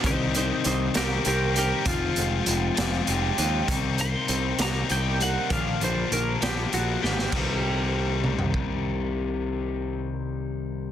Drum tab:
CC |------------|------------|------------|------------|
HH |x-x-x-x-x-x-|x-x-x-x-x-x-|x-x-x-x-x-x-|x-x-x-x-x---|
SD |------o-----|------o-----|------o-----|------o---oo|
T2 |------------|------------|------------|------------|
FT |------------|------------|------------|------------|
BD |o-----------|o-----------|o-----------|o-----------|

CC |x-----------|------------|
HH |------------|------------|
SD |------------|------------|
T2 |------o-----|------------|
FT |-------o----|------------|
BD |o-------o---|------------|